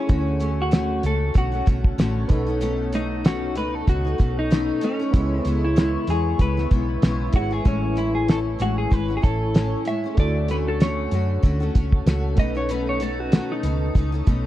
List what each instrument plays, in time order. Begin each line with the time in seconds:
Already playing: synth keys A3 E4 C#5, clean electric guitar C#4
0.07 fingered electric bass D2, steel-string acoustic guitar D3 A3 C#4 F#4, synth keys A3 C#4 F#4, ambient pad C#4 F#5 A5, kick, closed hi-hat
0.12 synth keys C#5
0.40 steel-string acoustic guitar D3 A3 C#4 F#4, closed hi-hat
0.62 clean electric guitar F#4
0.71 steel-string acoustic guitar D3 A3 C#4 F#4, snare, closed hi-hat
1.03 fingered electric bass C#2, steel-string acoustic guitar A3 C#4 F#4, clean electric guitar A4, closed hi-hat
1.34 fingered electric bass B1, steel-string acoustic guitar D3 A3 C#4 F#4, clean electric guitar F#4, kick, closed hi-hat
1.52 steel-string acoustic guitar A3 C#4 F#4
1.66 fingered electric bass B1, steel-string acoustic guitar D3 A3 C#4 F#4, kick, closed hi-hat
1.84 kick
1.98 fingered electric bass A1, steel-string acoustic guitar D3 A3 C#4 F#4, snare, closed hi-hat
2.28 fingered electric bass B1, steel-string acoustic guitar B2 A3 C#4, synth keys B3 D#4 A4, ambient pad A4 D#5 C#6, kick, closed hi-hat
2.32 steel-string acoustic guitar D#4, synth keys C#5
2.47 steel-string acoustic guitar A3 C#4 D#4
2.61 steel-string acoustic guitar B2 A3 C#4 D#4, closed hi-hat
2.92 steel-string acoustic guitar B2 A3 C#4 D#4, clean electric guitar D#4, closed hi-hat
3.24 steel-string acoustic guitar B2 A3 C#4 D#4, clean electric guitar F#4, snare, closed hi-hat
3.55 fingered electric bass C#2, steel-string acoustic guitar B2 A3 C#4 D#4, clean electric guitar B4, closed hi-hat
3.75 clean electric guitar A4
3.87 fingered electric bass C#2, steel-string acoustic guitar B2 A3 C#4 D#4, clean electric guitar F#4, kick, closed hi-hat
4.05 steel-string acoustic guitar A3 C#4 D#4
4.18 fingered electric bass B1, steel-string acoustic guitar B2 A3 C#4 D#4, kick, closed hi-hat
4.39 clean electric guitar D#4
4.51 steel-string acoustic guitar B2 A3 C#4 D#4, snare, closed hi-hat
4.81 steel-string acoustic guitar B2 A3 C#4 D#4, clean electric guitar C#4, closed hi-hat
4.99 steel-string acoustic guitar A3 C#4 D#4
5.11 fingered electric bass C#2, steel-string acoustic guitar C#3 G#3, synth keys B3 E4 G#4, ambient pad B4 E5, kick, closed hi-hat
5.15 steel-string acoustic guitar B3 E4, synth keys C#5
5.43 fingered electric bass C#2, steel-string acoustic guitar C#3 G#3 B3, clean electric guitar B3, closed hi-hat
5.48 steel-string acoustic guitar E4
5.65 clean electric guitar E4
5.76 steel-string acoustic guitar C#3 G#3 B3 E4, snare, closed hi-hat
6.07 fingered electric bass E2, steel-string acoustic guitar C#3 G#3 B3 E4, clean electric guitar G#4, closed hi-hat
6.39 fingered electric bass C#2, steel-string acoustic guitar C#3 G#3 B3 E4, clean electric guitar B4, kick, closed hi-hat
6.57 steel-string acoustic guitar G#3 B3 E4, snare
6.71 fingered electric bass B1, steel-string acoustic guitar C#3 G#3 B3 E4, kick, closed hi-hat
7.02 fingered electric bass B1, steel-string acoustic guitar C#3 G#3 B3 E4, snare, closed hi-hat
7.33 fingered electric bass G#1, steel-string acoustic guitar C#3 G#3 B3 E4, synth keys B3 E4 G#4 C#5, clean electric guitar F#4, kick, closed hi-hat
7.51 steel-string acoustic guitar G#3 B3 E4, clean electric guitar G#4
7.64 fingered electric bass A1, steel-string acoustic guitar A2 G#3 C#4 E4, synth keys A3 E4 G#5, clean electric guitar C#4, ambient pad C#5 G#5, kick, closed hi-hat
7.68 synth keys C#5
7.96 steel-string acoustic guitar A2 G#3 C#4 E4, clean electric guitar E4, closed hi-hat
8.15 clean electric guitar G#4
8.28 steel-string acoustic guitar A2 C#4 E4, clean electric guitar A4, snare, closed hi-hat
8.59 fingered electric bass A1, steel-string acoustic guitar A2 G#3 C#4 E4, clean electric guitar F#4, closed hi-hat
8.78 clean electric guitar G#4
8.91 fingered electric bass G#1, steel-string acoustic guitar A2 G#3 C#4 E4, clean electric guitar B4, kick, closed hi-hat
9.08 steel-string acoustic guitar G#3 C#4 E4
9.17 clean electric guitar G#4
9.21 fingered electric bass A1, steel-string acoustic guitar A2 C#4 E4, synth keys A3 E4 C#5 G#5, clean electric guitar A4, kick, closed hi-hat
9.54 steel-string acoustic guitar A2 C#4 E4, snare, closed hi-hat
9.85 steel-string acoustic guitar A2 G#3 C#4 E4, clean electric guitar E5, closed hi-hat
10.04 steel-string acoustic guitar G#3 C#4 E4
10.15 fingered electric bass D2, steel-string acoustic guitar D3, synth keys A3 D4 F#4, ambient pad A4 F#5 A5, kick, closed hi-hat
10.19 steel-string acoustic guitar A3 F#4, synth keys A4, clean electric guitar D5
10.48 steel-string acoustic guitar D3 A3 C#4 F#4, clean electric guitar B4, closed hi-hat
10.68 clean electric guitar A4
10.80 steel-string acoustic guitar D3 A3 C#4 F#4, clean electric guitar C#5, snare, closed hi-hat
11.11 fingered electric bass F#2, steel-string acoustic guitar D3 A3 C#4 F#4, closed hi-hat
11.43 fingered electric bass D2, steel-string acoustic guitar D3 A3 C#4 F#4, kick, closed hi-hat
11.60 steel-string acoustic guitar A3 C#4 F#4
11.75 fingered electric bass C#2, steel-string acoustic guitar A3 C#4 F#4, kick, closed hi-hat
11.92 kick
12.06 fingered electric bass C#2, steel-string acoustic guitar A3 C#4 F#4, snare, closed hi-hat
12.35 fingered electric bass B1, steel-string acoustic guitar B2 A3, synth keys A3 C#4 D#4, ambient pad A5 D#6, kick, closed hi-hat
12.39 steel-string acoustic guitar C#4 D#4, synth keys B4, clean electric guitar D#5
12.55 steel-string acoustic guitar A3 C#4 D#4, clean electric guitar C#5
12.69 steel-string acoustic guitar B2 A3 C#4 D#4, clean electric guitar B4, closed hi-hat
12.89 clean electric guitar C#5
13.00 steel-string acoustic guitar B2 A3 C#4 D#4, clean electric guitar A4, closed hi-hat
13.20 clean electric guitar F#4
13.32 steel-string acoustic guitar B2 A3 C#4 D#4, snare, closed hi-hat
13.52 clean electric guitar D#4
13.63 fingered electric bass C#2, steel-string acoustic guitar B2 A3 C#4 D#4, closed hi-hat
13.95 fingered electric bass C#2, steel-string acoustic guitar B2 A3 C#4 D#4, kick, closed hi-hat
14.12 steel-string acoustic guitar A3 C#4 D#4
14.27 fingered electric bass B1, steel-string acoustic guitar B2 A3 C#4 D#4, kick, closed hi-hat